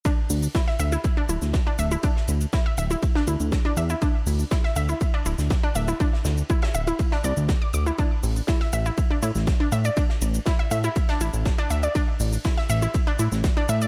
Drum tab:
RD |x---x-x-x-x-x-x-|x-xxx-x-x-xxx-x-|x---x-x-x-x-x-x-|x-x-xx-xx-xxx-x-|
HH |--o-------------|----------------|--o-------------|----------------|
SH |x-xxx-xxx-xxx-xx|x-xxx-xxx-xxx-xx|x-xxx-xxx-xxx-xx|x-xxx-xxx-xxx-xx|
SD |----oo-----oo---|-o--o----o--o---|----oo-----oo---|-oo--o---o--o---|
BD |o---o---o---o---|o---o---o---o---|o---o---o---o---|o---o---o---o---|

RD |x---x-x-x-x-x-x-|x-xxx-x-x-xxx-x-|x---x-x-x-x-x-x-|
HH |--o-------------|----------------|--o-------------|
SH |x-xxx-xxx-xxx-xx|x-xxx-xxx-xxx-xx|x-xxx-xxx-xxx-xx|
SD |----oo-----oo---|-o--o----o--o---|----oo-----oo---|
BD |o---o---o---o---|o---o---o---o---|o---o---o---o---|